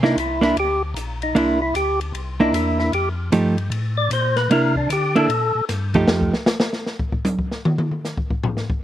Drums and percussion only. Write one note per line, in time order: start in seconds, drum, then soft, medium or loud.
0.04 snare soft
0.18 hi-hat pedal medium
0.18 ride medium
0.43 snare soft
0.43 ride soft
0.57 ride medium
0.96 hi-hat pedal medium
0.96 ride medium
1.22 ride soft
1.36 ride medium
1.75 hi-hat pedal medium
1.75 ride medium
2.01 ride soft
2.15 ride medium
2.54 hi-hat pedal medium
2.54 ride medium
2.79 snare soft
2.93 ride medium
3.32 hi-hat pedal medium
3.32 ride medium
3.58 ride soft
3.72 ride medium
4.11 hi-hat pedal medium
4.11 ride medium
4.36 snare soft
4.36 ride soft
4.51 ride medium
4.76 kick medium
4.90 hi-hat pedal medium
4.90 ride medium
5.16 ride soft
5.30 ride medium
5.69 snare soft
5.69 hi-hat pedal medium
5.69 ride medium
5.94 kick medium
5.94 ride soft
6.08 snare loud
6.21 kick medium
6.34 snare medium
6.46 snare loud
6.46 hi-hat pedal medium
6.60 snare loud
6.73 snare soft
6.86 snare soft
6.99 kick medium
7.12 kick medium
7.25 hi-hat pedal medium
7.25 high tom medium
7.39 kick medium
7.51 snare soft
7.65 mid tom loud
7.78 mid tom medium
7.91 mid tom soft
8.05 snare soft
8.05 hi-hat pedal medium
8.17 kick medium
8.30 kick medium
8.44 floor tom loud
8.57 snare soft
8.70 kick medium